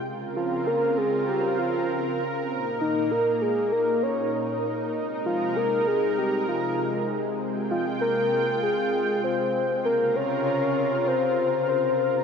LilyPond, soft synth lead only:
\new Staff \with { instrumentName = "Soft synth lead" } { \time 4/4 \key bes \dorian \tempo 4 = 98 r8 f'8 bes'8 aes'8 g'8 f'4 r8 | r8 ees'8 bes'8 aes'8 bes'8 des''4 r8 | r8 f'8 bes'8 aes'8 g'8 f'4 r8 | r8 f'8 bes'4 aes'4 c''4 |
bes'8 des''4. c''4 c''4 | }